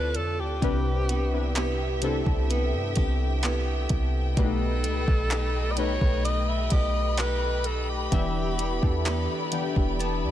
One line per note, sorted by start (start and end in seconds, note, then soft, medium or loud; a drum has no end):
0.00 0.17 D2 loud
0.00 0.62 D3 medium
0.00 0.63 D3 medium
0.00 0.62 C4 medium
0.00 1.09 C4 medium
0.00 0.63 E4 medium
0.00 0.64 F4 medium
0.00 0.72 F4 medium
0.00 0.58 A4 medium
0.00 0.72 A4 medium
0.00 0.17 B4 loud
0.00 0.64 C#5 medium
0.00 0.58 D5 medium
0.00 0.64 D5 medium
0.00 0.58 A5 medium
0.15 0.40 F2 loud
0.15 0.41 A4 medium
0.15 closed hi-hat medium
0.39 0.61 D2 loud
0.39 1.80 G4 medium
0.62 2.22 C2 loud
0.62 1.17 C3 medium
0.62 4.37 C3 medium
0.62 1.18 C4 medium
0.62 1.18 D4 medium
0.62 1.18 E4 medium
0.62 4.33 G4 medium
0.62 1.18 B4 loud
0.62 4.33 E5 medium
0.62 8.08 G5 medium
0.62 kick loud
0.62 closed hi-hat medium
1.09 1.55 B3 medium
1.09 closed hi-hat medium
1.32 1.88 C3 medium
1.32 1.88 C4 medium
1.32 1.88 D4 medium
1.32 1.89 E4 medium
1.32 1.89 B4 medium
1.56 2.49 B3 medium
1.56 2.02 E4 medium
1.56 2.96 G4 medium
1.56 clap loud
1.56 closed hi-hat medium
2.02 3.50 C3 medium
2.02 3.51 C4 medium
2.02 3.51 D4 medium
2.02 3.43 E4 medium
2.02 3.51 E4 medium
2.02 3.52 A4 loud
2.02 closed hi-hat medium
2.26 2.75 C2 loud
2.26 kick medium
2.50 3.43 B3 medium
2.50 closed hi-hat medium
2.73 2.95 G2 medium
2.96 3.87 C2 loud
2.96 3.44 G4 medium
2.96 kick medium
2.96 closed hi-hat medium
3.43 4.84 B3 medium
3.43 4.47 E4 medium
3.43 4.87 G4 medium
3.43 clap loud
3.43 closed hi-hat medium
3.89 4.35 C2 loud
3.89 kick medium
3.89 closed hi-hat medium
4.37 4.86 B1 loud
4.37 5.48 B2 medium
4.37 8.12 B2 medium
4.37 5.48 A3 medium
4.37 4.44 D4 medium
4.37 5.49 G4 medium
4.37 8.09 A4 medium
4.37 5.73 A4 loud
4.37 5.49 B4 loud
4.37 8.09 D#5 medium
4.37 10.31 B5 medium
4.37 kick loud
4.37 closed hi-hat medium
4.44 5.52 D#4 medium
4.84 5.06 C#2 medium
4.84 5.30 A3 medium
4.84 closed hi-hat medium
5.08 5.98 B1 loud
5.08 kick medium
5.31 6.23 A3 medium
5.31 5.77 D#4 medium
5.31 6.71 G4 medium
5.31 clap loud
5.31 closed hi-hat medium
5.71 5.79 D#5 medium
5.77 7.25 B2 medium
5.77 7.26 A3 medium
5.77 7.18 D#4 medium
5.77 7.26 D#4 medium
5.77 7.26 G4 medium
5.77 7.27 B4 medium
5.77 6.24 C#5 loud
5.77 closed hi-hat medium
6.01 6.69 B1 medium
6.01 kick medium
6.25 7.17 A3 medium
6.25 6.50 D#5 loud
6.25 closed hi-hat medium
6.48 6.73 E5 medium
6.70 8.08 B1 loud
6.70 7.19 G4 medium
6.70 7.20 D#5 loud
6.70 kick medium
6.70 closed hi-hat medium
7.17 8.21 A3 medium
7.17 8.22 D#4 medium
7.17 9.07 G4 medium
7.17 7.67 B4 medium
7.17 clap loud
7.17 closed hi-hat medium
7.64 7.91 A4 medium
7.64 closed hi-hat medium
7.89 9.30 G4 medium
8.11 8.79 E1 loud
8.11 8.67 E3 medium
8.11 10.31 E3 medium
8.11 8.68 B3 medium
8.11 8.68 D4 medium
8.11 10.31 G4 medium
8.11 8.68 G4 medium
8.11 10.31 D5 medium
8.11 10.31 E5 medium
8.11 8.68 E5 loud
8.11 kick loud
8.11 closed hi-hat medium
8.59 9.05 B3 medium
8.59 closed hi-hat medium
8.82 9.28 E2 loud
8.82 9.37 E3 medium
8.82 9.38 B3 medium
8.82 9.38 D4 medium
8.82 9.38 G4 medium
8.82 9.39 A4 medium
8.82 kick medium
9.06 9.98 B3 medium
9.06 9.52 D4 medium
9.06 10.31 G4 medium
9.06 clap loud
9.06 closed hi-hat medium
9.52 10.31 E3 medium
9.52 10.31 B3 medium
9.52 10.31 D4 medium
9.52 10.31 G4 medium
9.52 10.31 G5 medium
9.52 closed hi-hat medium
9.76 10.24 E1 loud
9.76 kick medium
9.99 10.31 B3 medium
9.99 10.31 A5 medium
9.99 closed hi-hat medium
10.23 10.31 E2 medium